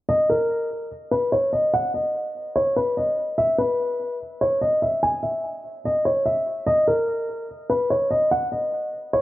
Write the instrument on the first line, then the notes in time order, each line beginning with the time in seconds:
grand piano
0.09 D#5
0.30 A#4
1.12 B4
1.32 C#5
1.53 D#5
1.74 F#5
1.94 D#5
2.56 C#5
2.76 B4
2.97 D#5
3.38 E5
3.58 B4
4.41 C#5
4.61 D#5
4.82 E5
5.03 G#5
5.23 E5
5.85 D#5
6.05 C#5
6.26 E5
6.66 D#5
6.88 A#4
7.69 B4
7.90 C#5
8.11 D#5
8.31 F#5
8.52 D#5
9.13 C#5